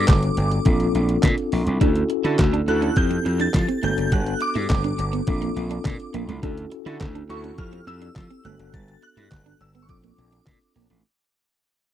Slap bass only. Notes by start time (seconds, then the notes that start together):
0.08 G1
0.37 G1
0.66 A#1
0.95 A#1
1.23 A#2
1.53 A#1
1.67 C2
1.81 D2
2.25 D3
2.39 D2
2.68 D2
2.97 F2
3.26 F2
3.54 F3
3.83 G1
3.98 F#1
4.12 G1
4.55 G2
4.70 G1
4.99 G1
5.28 A#1
5.56 A#1
5.85 A#2
6.14 A#1
6.28 C2
6.43 D2
6.86 D3
7.01 D2
7.29 D2
7.58 F2
7.87 F2
8.16 F3
8.45 G1
8.59 F#1
8.74 G1
9.17 G2
9.32 G1
9.60 G1
9.89 A#1
10.18 A#1
10.47 A#2
10.76 A#1
10.90 A1